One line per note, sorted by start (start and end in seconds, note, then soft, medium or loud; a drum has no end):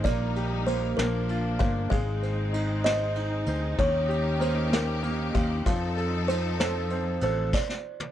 0.00 0.94 A#3 medium
0.04 0.94 A#1 loud
0.04 0.97 G3 medium
0.04 0.67 A#3 medium
0.04 0.97 D#4 medium
0.04 0.68 D5 loud
0.04 kick loud
0.04 ride medium
0.36 0.96 G4 medium
0.36 ride soft
0.67 0.97 A#3 medium
0.67 0.81 C5 medium
0.67 ride medium
0.97 1.57 A#1 loud
0.97 1.91 F3 medium
0.97 1.91 A#3 medium
0.97 1.59 A#3 medium
0.97 1.91 D4 medium
0.97 1.62 A#4 medium
0.97 snare loud
0.97 ride medium
1.29 1.90 F4 medium
1.29 ride soft
1.59 1.90 G1 loud
1.59 1.90 A#3 medium
1.59 1.89 F5 medium
1.59 kick loud
1.59 ride medium
1.90 3.44 G#1 loud
1.90 3.75 G#3 medium
1.90 3.77 G#3 medium
1.90 3.77 C4 medium
1.90 5.62 D#4 medium
1.90 2.87 F5 medium
1.90 kick loud
1.90 ride medium
2.23 2.84 C5 medium
2.23 ride soft
2.53 3.15 D#4 medium
2.53 ride medium
2.84 3.46 C5 medium
2.84 3.81 D#5 medium
2.84 snare loud
2.84 ride medium
3.16 3.77 D#4 medium
3.16 ride soft
3.46 3.76 D2 medium
3.46 3.78 C5 medium
3.46 ride medium
3.78 5.31 D#2 loud
3.78 5.62 D#3 medium
3.78 5.64 A#3 medium
3.78 5.64 C#4 medium
3.78 5.64 G4 medium
3.78 4.43 C#5 loud
3.78 kick loud
3.78 ride medium
4.08 4.71 G4 medium
4.08 ride soft
4.40 5.01 A#3 medium
4.40 4.73 C5 medium
4.40 ride medium
4.72 5.32 G4 medium
4.72 5.37 A#4 medium
4.72 snare loud
4.72 ride medium
5.03 5.64 A#3 medium
5.03 ride soft
5.34 5.64 D#2 loud
5.34 5.64 G4 medium
5.34 5.65 F5 medium
5.34 kick loud
5.34 ride medium
5.66 7.18 F2 loud
5.66 7.51 F3 medium
5.66 7.49 F3 medium
5.66 7.51 C4 medium
5.66 7.52 D#4 medium
5.66 7.52 A4 medium
5.66 6.30 F5 medium
5.66 kick loud
5.66 ride medium
5.97 6.59 A4 medium
5.97 ride soft
6.28 6.90 C4 medium
6.28 6.59 C5 medium
6.28 ride medium
6.60 7.21 A4 medium
6.60 7.22 C5 medium
6.60 snare loud
6.60 ride medium
6.90 7.51 C4 medium
6.90 ride soft
7.21 7.51 A1 loud
7.21 7.52 A4 medium
7.21 7.55 C5 medium
7.21 ride medium
7.53 8.12 D5 medium
7.53 kick loud
7.53 snare medium
7.53 crash medium
7.69 snare medium
8.00 high tom medium